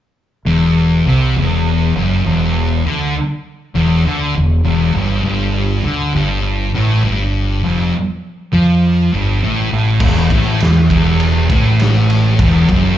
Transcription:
0.45 fingered electric bass E1, distorted electric guitar E2
1.06 fingered electric bass C2, distorted electric guitar C3
1.36 fingered electric bass E1, distorted electric guitar E2
1.95 fingered electric bass F#1, distorted electric guitar F#2
2.25 fingered electric bass E1, distorted electric guitar E2
2.85 fingered electric bass D2, distorted electric guitar D3
3.74 fingered electric bass E1, distorted electric guitar E2
4.05 fingered electric bass D2, distorted electric guitar D3
4.35 fingered electric bass E1, distorted electric guitar E2
4.64 fingered electric bass E1, distorted electric guitar E2
4.94 fingered electric bass G1, distorted electric guitar G2
5.24 fingered electric bass G1, distorted electric guitar G2
5.83 fingered electric bass D2, distorted electric guitar D3
6.13 fingered electric bass G1, distorted electric guitar G2
6.74 fingered electric bass A1, distorted electric guitar A2
7.03 fingered electric bass G1, distorted electric guitar G2
7.63 fingered electric bass F1, distorted electric guitar F2
8.53 fingered electric bass F2, distorted electric guitar F3
9.12 fingered electric bass G1, distorted electric guitar G2
9.42 fingered electric bass A1, distorted electric guitar A2
9.71 fingered electric bass A1, distorted electric guitar A2
10.00 fingered electric bass E1, distorted electric guitar E2, kick, crash
10.30 fingered electric bass A1, distorted electric guitar A2, kick, ride
10.60 fingered electric bass E2, distorted electric guitar E3, snare, ride
10.90 fingered electric bass E1, distorted electric guitar E2, kick, ride
11.20 ride
11.50 fingered electric bass A1, distorted electric guitar A2, kick, ride
11.80 snare, ride
12.10 ride
12.39 fingered electric bass E1, distorted electric guitar E2, kick, ride
12.68 fingered electric bass F#1, distorted electric guitar F#2, kick, ride

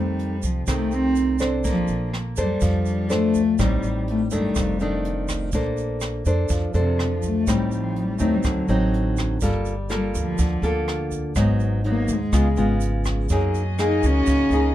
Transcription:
Already playing: upright bass F2, nylon-string guitar F2 D#3 A3 C4, cello G3
0.19 closed hi-hat
0.43 upright bass C2, cello F3, kick, closed hi-hat, shaker
0.67 upright bass C2, nylon-string guitar C3 D#3 A3 C4, cello A3, kick, cross-stick, closed hi-hat, shaker
0.92 cello C4, closed hi-hat, shaker
1.16 closed hi-hat, shaker
1.39 nylon-string guitar D4 A4 C5, kick, cross-stick, shaker
1.64 upright bass A#1, cello F3, nylon-string guitar A#3, kick, closed hi-hat, shaker
1.88 upright bass A#1, closed hi-hat, shaker
2.14 cross-stick, closed hi-hat
2.36 upright bass F2, cello G3, nylon-string guitar D4 A4 C5, kick, closed hi-hat, shaker
2.61 upright bass F2, nylon-string guitar F3, kick, closed hi-hat, shaker
2.85 closed hi-hat, shaker
3.10 cello A3, nylon-string guitar D4 A4 C5, cross-stick, closed hi-hat, shaker
3.34 kick, closed hi-hat, shaker
3.59 upright bass A1, nylon-string guitar A2 G3 C4 D#4, cello G3, kick, cross-stick, closed hi-hat, shaker
3.83 upright bass A1, closed hi-hat, shaker
4.08 cello A3, closed hi-hat
4.31 upright bass G1, nylon-string guitar D#3 A3 D4, cello G3, kick, closed hi-hat, shaker
4.55 upright bass F1, nylon-string guitar F2, kick, cross-stick, closed hi-hat, shaker
4.80 nylon-string guitar D#3 A3 D4, closed hi-hat, shaker
5.05 closed hi-hat
5.28 kick, cross-stick, shaker
5.52 upright bass A#1, nylon-string guitar A#3 D4 A4 C5, kick, closed hi-hat, shaker
5.77 closed hi-hat, shaker
6.01 cross-stick, closed hi-hat, shaker
6.26 upright bass F2, nylon-string guitar D4 A4 C5, kick, closed hi-hat, shaker
6.49 upright bass F2, nylon-string guitar F3, kick, closed hi-hat, shaker
6.74 upright bass F2, nylon-string guitar D4 A4 C5, closed hi-hat, shaker
6.78 cello C3
6.99 cross-stick, closed hi-hat
7.04 cello F3
7.22 kick, closed hi-hat, shaker
7.27 cello A3
7.47 upright bass A1, nylon-string guitar A2 G3 C4 D#4, kick, cross-stick, closed hi-hat, shaker
7.54 cello G3
7.71 closed hi-hat, shaker
7.76 cello F3
7.96 closed hi-hat
8.03 cello G3
8.18 upright bass D#2, nylon-string guitar F#3 C4 D#4, cello A3, kick, closed hi-hat, shaker
8.34 cello G3
8.43 upright bass D2, nylon-string guitar D3, kick, cross-stick, closed hi-hat, shaker
8.50 cello F#3
8.68 upright bass A1, nylon-string guitar F#3 C4 D#4, closed hi-hat, shaker
8.94 closed hi-hat
9.17 kick, cross-stick, shaker
9.41 upright bass G1, nylon-string guitar G3 A#3 F4 A4, kick, closed hi-hat, shaker
9.65 closed hi-hat, shaker
9.90 nylon-string guitar A#3 F4 A4, cross-stick, closed hi-hat, shaker
9.95 cello G3
10.15 upright bass D2, cello F3, kick, closed hi-hat, shaker
10.38 upright bass D2, nylon-string guitar D3, kick, closed hi-hat, shaker
10.62 upright bass D2, nylon-string guitar A#3 F4 A4, closed hi-hat, shaker
10.88 cross-stick, closed hi-hat
11.11 kick, closed hi-hat, shaker
11.35 upright bass G#1, nylon-string guitar G#2 F#3 B3 D#4, kick, cross-stick, closed hi-hat, shaker
11.60 closed hi-hat, shaker
11.84 nylon-string guitar F#3 B3 D#4, closed hi-hat
11.90 cello A#3
12.08 upright bass D#2, kick, closed hi-hat, shaker
12.12 cello G#3
12.33 upright bass C#2, nylon-string guitar C#3 G#3 B3 F4, kick, cross-stick, closed hi-hat, shaker
12.56 upright bass G#1, nylon-string guitar G#3 B3 F4, closed hi-hat, shaker
12.81 closed hi-hat, shaker
13.05 kick, cross-stick, closed hi-hat, shaker
13.29 upright bass F#2, nylon-string guitar F#3 A#3 D#4 G#4, string section A#3 F#4 G#4 D#5, kick, closed hi-hat, shaker
13.54 closed hi-hat, shaker
13.79 nylon-string guitar A#3 D#4 G#4, cross-stick, closed hi-hat, shaker
13.84 cello D#4
14.03 upright bass C#2, cello C#4, kick, closed hi-hat, shaker
14.26 upright bass C#2, nylon-string guitar C#3, kick, closed hi-hat, shaker
14.50 upright bass C#2, nylon-string guitar A#3 D#4 G#4, closed hi-hat, shaker

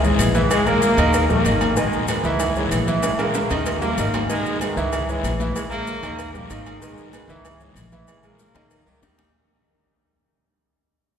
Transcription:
Already playing: upright bass C#2
0.03 trombone section G#2 E3, grand piano G#3 G#4 C#5, high conga, maracas
0.18 upright bass A#1, cowbell, high conga, low agogo, short guiro, maracas
0.35 grand piano E3 E4 E5, cowbell, high conga, short guiro, maracas
0.50 trombone section C#3 G#3, cowbell, low agogo, long guiro, maracas
0.66 trombone section C#3 A#3, grand piano G#3 G#4 A#4, high conga, low agogo, maracas
0.82 cowbell, high conga, short guiro, maracas
0.97 upright bass D#2, grand piano D#3 D#4 D#5, cowbell, high conga, low agogo, short guiro, maracas
1.13 cowbell, high conga, low agogo, long guiro, maracas
1.29 upright bass A#1, trombone section C#3 A#3, grand piano G3 G4 A#4, high conga, maracas
1.44 upright bass G#1, grand piano D#3 D#4 D#5, cowbell, high conga, low agogo, short guiro, maracas
1.61 cowbell, high conga, low agogo, short guiro, maracas
1.77 trombone section B2 G#3, grand piano D#3 D#4 D#5, cowbell, high conga, low agogo, long guiro, maracas
1.93 high conga, maracas
2.08 trombone section G#2 D#3, grand piano G#3 G#4 B4, cowbell, high conga, low agogo, short guiro, maracas
2.24 upright bass C#2, grand piano E3 E4 E5, high conga, short guiro, maracas
2.40 trombone section G#2 D#3, cowbell, high conga, low conga, low agogo, long guiro, maracas
2.55 trombone section G#2 E3, grand piano G#3 G#4 C#5, high conga, low conga, maracas
2.71 upright bass A#1, cowbell, high conga, low agogo, short guiro, maracas
2.87 grand piano E3 E4 E5, cowbell, high conga, short guiro, maracas
3.03 trombone section C#3 G#3, cowbell, high conga, high timbale, low agogo, long guiro, maracas
3.18 trombone section C#3 A#3, grand piano G#3 G#4 A#4, high conga, high timbale, low agogo, maracas
3.34 cowbell, high conga, high timbale, short guiro, maracas
3.50 upright bass D#2, grand piano D#3 D#4 D#5, cowbell, high conga, high timbale, low agogo, short guiro, maracas
3.66 cowbell, high conga, low timbale, low agogo, long guiro, maracas
3.81 trombone section C#3 A#3, grand piano G3 G4 A#4, high conga, low timbale, maracas
3.98 upright bass G#1, grand piano D#3 D#4 D#5, cowbell, high conga, low agogo, short guiro, maracas
4.14 cowbell, high conga, low timbale, low agogo, short guiro, maracas
4.28 trombone section B2 G#3, grand piano D#3 D#4 D#5, cowbell, high conga, low agogo, long guiro, maracas
4.46 high conga, maracas
4.60 trombone section G#2 D#3, grand piano G#3 G#4 B4, cowbell, high conga, low agogo, short guiro, maracas
4.76 upright bass C#2, grand piano E3 E4 E5, high conga, short guiro, maracas
4.92 trombone section G#2 D#3, cowbell, high conga, low conga, low agogo, long guiro, maracas
5.08 trombone section G#2 E3, grand piano G#3 G#4 C#5, high conga, maracas
5.23 upright bass A#1, cowbell, high conga, low agogo, short guiro, maracas
5.40 grand piano E3 E4 E5, cowbell, high conga, short guiro, maracas
5.55 trombone section C#3 G#3, cowbell, high conga, low agogo, long guiro, maracas
5.70 trombone section C#3 A#3, grand piano G#3 G#4 A#4, high conga, low agogo, maracas
5.87 cowbell, high conga, short guiro, maracas
6.02 upright bass D#2, grand piano D#3 D#4 D#5, cowbell, high conga, low agogo, short guiro, maracas
6.19 cowbell, high conga, low agogo, long guiro, maracas
6.34 upright bass A#1, trombone section C#3 A#3, grand piano G3 G4 A#4, high conga, maracas
6.50 upright bass G#1, grand piano D#3 D#4 D#5, cowbell, high conga, low agogo, short guiro, maracas
6.66 cowbell, high conga, low agogo, short guiro, maracas
6.81 trombone section B2 G#3, grand piano D#3 D#4 D#5, cowbell, low agogo, long guiro, maracas
6.97 high conga, maracas
7.12 trombone section G#2 D#3, grand piano G#3 G#4 B4, cowbell, high conga, low agogo, short guiro, maracas
7.28 upright bass C#2, grand piano E3 E4 E5, high conga, short guiro, maracas
7.45 trombone section G#2 D#3, cowbell, high conga, low conga, low agogo, long guiro, maracas
7.60 trombone section G#2 E3, grand piano G#3 G#4 C#5, high conga, low conga, maracas
7.75 upright bass A#1, cowbell, high conga, low agogo, short guiro, maracas
7.92 grand piano E3 E4 E5, cowbell, high conga, short guiro, maracas
8.07 trombone section C#3 G#3, cowbell, low agogo, long guiro, maracas
8.23 trombone section C#3 A#3, grand piano G#3 G#4 A#4, high conga, low agogo, maracas
8.39 cowbell, high conga, short guiro, maracas
8.54 upright bass D#2, saxophone section C#3, grand piano D#3 D#4 D#5, cowbell, high bongo, high conga, low agogo, short guiro, maracas
8.71 saxophone section D#3, cowbell, high conga, low agogo, long guiro, maracas
8.86 upright bass C#2, saxophone section D#3, grand piano G3 G4 A#4, high conga, maracas
9.02 upright bass D#2, grand piano D#3 D#4 D#5, saxophone section G3, cowbell, low bongo, high conga, low agogo, short guiro, maracas
9.18 cowbell, low bongo, high conga, low agogo, short guiro, maracas

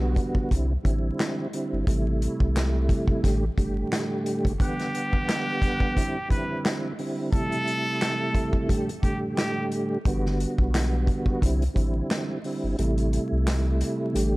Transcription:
Already playing: sub bass B1, tonewheel organ D3 G3 B3 F#4
0.16 kick, closed hi-hat
0.35 kick
0.50 sub bass C2, tonewheel organ D3 G3 C4 E4, kick, closed hi-hat
0.83 sub bass A1, tonewheel organ D3 G3 C4 E4, kick, closed hi-hat
1.20 snare, clap, closed hi-hat
1.53 tonewheel organ D3 G3 C4 E4, closed hi-hat
1.73 sub bass G1
1.87 sub bass A1, tonewheel organ C3 G3 A3 E4, kick, closed hi-hat
2.22 closed hi-hat
2.40 sub bass C2, kick
2.56 snare, clap, closed hi-hat
2.89 kick, closed hi-hat
3.08 kick
3.22 sub bass A1, tonewheel organ A2 D3 G3 A3 G4, kick, snare, closed hi-hat
3.57 sub bass G1, tonewheel organ A2 D3 G3 A3 G4, kick, closed hi-hat
3.93 snare, clap, closed hi-hat
4.26 closed hi-hat
4.45 sub bass F#1, kick, closed hi-hat
4.60 tonewheel organ D3 G3 B3 F#5, muted trumpet G4, kick, closed hi-hat
4.79 snare, closed hi-hat
4.95 closed hi-hat
5.13 kick
5.29 snare, clap, closed hi-hat
5.62 kick, closed hi-hat
5.80 kick
5.96 tonewheel organ D3 G3 C4 E4, kick, closed hi-hat
6.28 tonewheel organ D3 G3 C4 E4, muted trumpet B4, kick, closed hi-hat
6.65 snare, clap, closed hi-hat
6.99 tonewheel organ D3 G3 C4 E4, open hi-hat
7.32 tonewheel organ C3 G3 A3 E4, muted trumpet A4, kick, closed hi-hat
7.52 closed hi-hat
7.67 closed hi-hat
8.02 snare, clap, closed hi-hat
8.35 kick, closed hi-hat
8.53 kick
8.67 tonewheel organ A2 D3 G3 A3 G4, kick, closed hi-hat
8.89 closed hi-hat
9.02 tonewheel organ A2 D3 G3 A3 G4, muted trumpet G4, kick, closed hi-hat
9.37 muted trumpet G4, snare, clap, closed hi-hat
9.72 closed hi-hat
10.05 sub bass G1, tonewheel organ D3 G3 B3 F#4, kick, closed hi-hat
10.26 snare
10.40 closed hi-hat
10.58 sub bass B1, kick
10.74 snare, clap, closed hi-hat
11.07 kick, closed hi-hat
11.26 kick
11.41 sub bass C2, tonewheel organ D3 G3 C4 E4, kick, closed hi-hat
11.62 closed hi-hat
11.74 sub bass A1, tonewheel organ D3 G3 C4 E4, kick, closed hi-hat
12.11 snare, clap, closed hi-hat
12.44 tonewheel organ D3 G3 C4 E4, open hi-hat
12.64 sub bass G1
12.78 sub bass A1, tonewheel organ C3 G3 A3 E4, closed hi-hat
12.98 closed hi-hat
13.13 closed hi-hat
13.32 sub bass C2
13.47 snare, clap, closed hi-hat
13.81 closed hi-hat
14.13 sub bass A1, tonewheel organ A2 D3 G3 A3 G4, closed hi-hat

